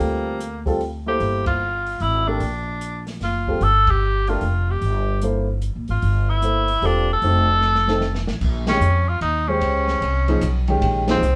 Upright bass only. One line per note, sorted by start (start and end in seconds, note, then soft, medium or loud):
0.00 1.16 D2 medium
1.20 1.97 G1 medium
2.00 2.38 G#1 medium
2.40 3.17 A#1 medium
3.21 3.58 F#1 medium
3.61 4.37 G1 medium
4.42 4.79 F1 medium
4.81 5.71 G1 medium
5.76 5.88 A#1 medium
5.89 6.01 G#1 medium
6.03 6.78 G1 medium
6.82 7.19 E1 medium
7.22 8.24 F1 medium
8.27 8.41 A1 medium
8.41 8.80 A#1 medium
8.80 9.20 F2 medium
9.21 9.60 D#2 medium
9.60 10.00 C#2 medium
10.01 10.40 C2 medium
10.42 10.81 B1 medium
10.81 11.21 A#1 medium
11.21 11.36 C2 medium